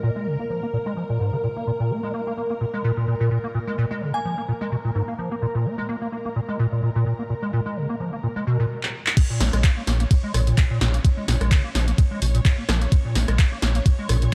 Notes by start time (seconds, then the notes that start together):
Already playing: A#4
0.03 A#2
0.16 G#3
0.26 C#3
0.39 A#3
0.50 F3
0.63 A#3
0.73 A#2
0.86 G#3
0.97 F3
1.09 A#2
1.20 G#2
1.33 C#3
1.44 A#2
1.56 A#3
1.67 A#2
1.80 A#2
1.90 A#3
2.03 G#3
2.14 A#3
2.27 A#3
2.37 A#3
2.50 A#3
2.61 A#2
2.74 G#3
2.84 A#2
2.97 A#2
3.08 A#2
3.20 A#2
3.31 A#2
3.44 A#3
3.54 A#2
3.67 G#3
3.78 A#2
3.91 G#3
4.01 C#3
4.14 A#3 G#5
4.25 F3
4.38 A#3
4.48 A#2
4.61 G#3
4.72 B2
4.85 A#2
4.95 G#2
5.08 A#3
5.18 F3
5.31 A#3
5.42 A#2
5.55 A#2
5.65 A#3
5.78 G#3
5.89 A#3
6.02 A#3
6.12 A#3
6.25 A#3
6.36 A#2
6.49 G#3
6.59 A#2
6.72 A#2
6.83 A#2
6.96 A#2
7.06 A#2
7.19 A#3
7.30 A#2
7.42 G#3
7.53 A#2
7.66 G#3
7.76 C#3
7.89 A#3
8.00 F3
8.13 A#3
8.23 A#2
8.36 G#3
8.47 B2
8.60 A#2
8.83 clap
9.06 clap
9.17 A#2 C#5, kick, closed hi-hat, crash, ride
9.30 A#2
9.40 A#1 A#3, snare, open hi-hat
9.53 A#1 G#3, cross-stick, closed hi-hat
9.64 A#3, kick, clap, closed hi-hat, ride
9.77 A#3
9.87 A#1 A#3, snare, open hi-hat
10.00 A#3, closed hi-hat
10.11 A#2, kick, closed hi-hat, ride
10.23 G#3
10.34 A#1 A#2, cross-stick, open hi-hat
10.47 A#2, closed hi-hat
10.57 A#2, kick, clap, closed hi-hat, ride
10.70 A#2
10.81 A#1 A#2, snare, open hi-hat
10.94 A#3, closed hi-hat
11.04 A#2, kick, closed hi-hat, ride
11.17 G#3
11.28 A#1 A#2, snare, open hi-hat
11.41 A#1 G#3, cross-stick, closed hi-hat
11.51 C#3, kick, clap, closed hi-hat, ride
11.64 A#3
11.75 A#1 F3, snare, open hi-hat
11.87 A#3, closed hi-hat
11.98 A#2, kick, closed hi-hat, ride
12.11 G#3
12.22 A#1 B2, open hi-hat
12.34 A#2, closed hi-hat
12.45 G#2, kick, clap, closed hi-hat, ride
12.58 A#3
12.69 A#1 F3, cross-stick, snare, open hi-hat
12.81 A#3, closed hi-hat
12.92 A#2, kick, closed hi-hat, ride
13.05 A#2
13.15 A#1 A#3, snare, open hi-hat
13.28 A#1 G#3, cross-stick, closed hi-hat
13.39 A#3, kick, clap, closed hi-hat, ride
13.52 A#3
13.62 A#1 A#3, snare, open hi-hat
13.75 A#3, closed hi-hat
13.86 A#2, kick, closed hi-hat, ride
13.99 G#3
14.09 A#1 A#2, cross-stick, open hi-hat
14.22 A#2, closed hi-hat